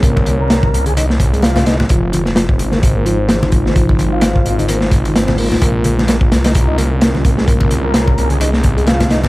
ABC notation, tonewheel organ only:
X:1
M:4/4
L:1/16
Q:"Swing 16ths" 1/4=129
K:Bbdor
V:1 name="Tonewheel organ"
B,3 B4 A E z2 A, F2 E z | F,2 F, z F, z2 B, z B, F, z F, z F, E, | F,3 F4 E B, z2 E, C2 B, z | B,2 B, z B, z2 E z E B, z B, z B, A, |
B,3 B4 A E z2 A, F2 E z |]